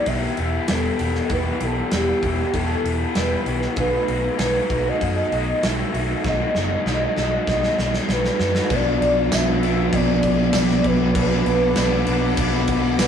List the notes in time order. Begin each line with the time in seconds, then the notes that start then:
Already playing: E2 B2 E3 G3 B3 G4
0.06 B1 E3 B3 E4 G4 E5, kick, open hi-hat
0.37 E1 B3 E4 G4, open hi-hat
0.68 E1 E3 B3 E4 G4 A4, snare, open hi-hat
0.99 E1 E2 B2 E3 G3 B3 E4 G4, open hi-hat
1.15 snare
1.29 E1 E2 B2 E3 G3 B3 E4 G4 B4, kick, open hi-hat
1.61 B1 B3 E4 G4 A4, open hi-hat
1.91 E1 E3 B3 E4 G4, snare, open hi-hat
2.23 E1 B3 E4 G4, kick, open hi-hat
2.53 E1 E3 B3 E4 G4 A4, kick, open hi-hat
2.84 E1 B3 E4 G4, open hi-hat
3.15 E1 E3 B3 E4 G4 B4, snare, open hi-hat
3.46 B1 E2 B2 E3 G3 B3 E4 G4, open hi-hat
3.62 snare
3.76 B1 B2 D#3 F#3 A3 B3 D#4 F#4 B4, kick, open hi-hat
4.08 B1 A3 D#4 F#4, open hi-hat
4.38 B1 F#3 A3 D#4 F#4 B4, snare, open hi-hat
4.70 B1 A3 D#4 F#4, kick, open hi-hat
4.88 D#5
5.01 F#2 B2 F#3 A3 D#4 F#4, kick, open hi-hat
5.32 B1 A3 D#4 F#4, open hi-hat
5.63 B1 F#3 A3 D#4 F#4 E5, snare, open hi-hat
5.93 B1 B2 D#3 A3 B3 D#4 F#4, open hi-hat
6.24 B1 B2 D#3 F#3 A3 B3 D#4 F#4 D#5, kick, snare
6.55 F#1 A3 D#4 F#4, snare
6.86 B1 F#3 A3 D#4 F#4, snare
7.16 B1 A3 D#4 F#4, snare
7.47 B1 B2 F#3 A3 D#4 F#4, kick, snare
7.63 snare
7.78 B1 A3 D#4 F#4, snare
7.94 snare
8.08 B1 F#3 A3 D#4 F#4 B4, snare
8.25 snare
8.39 F#2 B2 D#3 A3 B3 D#4 F#4, snare
8.55 snare
8.69 B1 B2 F#3 B3 D4 F#4 A4 F#5 B5 D6, kick, crash
8.75 D5
9.01 B1, crash
9.32 B1 B2 F#3 B3 D4 E5, snare, tambourine, crash
9.63 F#3 B3 D4, crash
9.92 B1 B2 F#3 B3 D4 D5, kick, crash
10.23 kick, crash
10.53 B1 B2 F#3 B3 D4 D5, snare, tambourine, crash
10.69 snare
10.84 B1 B4, kick, crash
11.15 B1 B2 F#3 B3 D4, kick, crash
11.45 B1, crash
11.76 B1 B2 F#3 B3 D4, snare, tambourine, crash
12.07 B1 F#3 B3 D4, crash
12.37 B1 B2 F#3 B3 D4, kick, crash
12.67 kick, crash
12.99 B1 B2 F#3 B3 D4 B4, snare, tambourine, crash